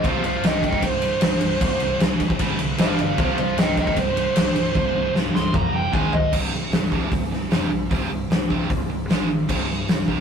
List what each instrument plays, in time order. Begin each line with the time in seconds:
0.04 fingered electric bass C1, distorted electric guitar C2 G2 C3, lead electric guitar C5 F5, kick, crash
0.22 fingered electric bass C1, distorted electric guitar C2 G2, lead electric guitar C5, crash
0.26 lead electric guitar F5
0.43 fingered electric bass C1, distorted electric guitar C2 G2, lead electric guitar D#5 G5, snare, crash
0.63 distorted electric guitar C2 G2, lead electric guitar D#5 G5, kick, crash
0.73 kick
0.82 fingered electric bass C1, distorted electric guitar C2 G2, lead electric guitar C5, kick, crash
1.01 distorted electric guitar C2 G2 C3, crash
1.21 fingered electric bass C1, distorted electric guitar C2 G2, snare, crash
1.25 distorted electric guitar C3
1.41 fingered electric bass C1, distorted electric guitar C2 G2, crash
1.61 fingered electric bass C1, distorted electric guitar C2 G2 C3, kick, crash
1.80 fingered electric bass C1, distorted electric guitar C2 G2, crash
2.00 fingered electric bass C1, distorted electric guitar C2 G2, snare, crash
2.19 fingered electric bass A1, distorted electric guitar C2 G2, kick, crash
2.30 kick
2.39 fingered electric bass G1, distorted electric guitar G2 D3 G3, kick, crash
2.59 fingered electric bass C2, distorted electric guitar G2 D3, crash
2.78 fingered electric bass G1, distorted electric guitar G2 D3 G3, lead electric guitar D5 F5, snare, crash
2.98 fingered electric bass G1, distorted electric guitar G2 D3, lead electric guitar D5 F5, crash
3.18 fingered electric bass C1, distorted electric guitar C2 G2 C3, lead electric guitar C5 F5, kick, crash
3.38 fingered electric bass C1, distorted electric guitar C2 G2, lead electric guitar C5 F5, crash
3.58 fingered electric bass C1, distorted electric guitar C2 G2, lead electric guitar D#5 G5, snare, crash
3.77 distorted electric guitar C2 G2, lead electric guitar D#5 G5, kick, crash
3.87 kick
3.96 fingered electric bass C1, distorted electric guitar C2 G2, lead electric guitar C5, kick, crash
4.15 distorted electric guitar C2 G2 C3, crash
4.35 fingered electric bass C1, distorted electric guitar C2 G2 C3, snare, crash
4.56 fingered electric bass C1, distorted electric guitar C2 G2, crash
4.75 fingered electric bass C1, distorted electric guitar C2 G2 C3, kick, high tom
4.95 fingered electric bass C1, distorted electric guitar C2 G2
5.14 fingered electric bass C1, distorted electric guitar C2 G2, snare
5.34 fingered electric bass C1, distorted electric guitar C2 G2, lead electric guitar C6, snare
5.54 distorted electric guitar C2 G2, fingered electric bass C2, lead electric guitar A#5, kick, mid tom
5.72 fingered electric bass F1, distorted electric guitar C2 G2 C3, lead electric guitar G5
5.92 fingered electric bass G#1, distorted electric guitar G#2 D#3 G#3, lead electric guitar G#5, kick
6.13 fingered electric bass G#1, distorted electric guitar G#2 D#3, lead electric guitar D#5, floor tom
6.33 fingered electric bass C1, distorted electric guitar C2 G2 C3, kick, crash
6.52 distorted electric guitar C2 G2, snare
6.72 fingered electric bass C1, distorted electric guitar C2 G2, snare, open hi-hat
6.92 fingered electric bass C1, distorted electric guitar C2 G2 C3, kick
7.11 fingered electric bass C1, distorted electric guitar C2 G2, kick, open hi-hat
7.32 distorted electric guitar C2 G2, snare
7.50 fingered electric bass F1, distorted electric guitar C2 G2 C3, snare, open hi-hat
7.71 fingered electric bass A#1, distorted electric guitar C2 G2
7.91 fingered electric bass C1, distorted electric guitar C2 G2 C3, kick, open hi-hat
8.10 fingered electric bass C1, distorted electric guitar C2 G2
8.30 fingered electric bass C1, distorted electric guitar C2 G2, snare, open hi-hat
8.49 fingered electric bass C1, distorted electric guitar C2 G2 C3, kick
8.69 fingered electric bass C1, distorted electric guitar C2 G2, kick, open hi-hat
8.89 fingered electric bass C1, distorted electric guitar C2 G2
9.08 fingered electric bass G#1, distorted electric guitar G#2 D#3 G#3, snare, open hi-hat
9.29 distorted electric guitar G#2 D#3
9.48 fingered electric bass C1, distorted electric guitar C2 G2 C3, kick, crash
9.68 distorted electric guitar C2 G2, snare
9.88 fingered electric bass C1, distorted electric guitar C2 G2, snare, open hi-hat
10.08 fingered electric bass C1, distorted electric guitar C2 G2 C3, kick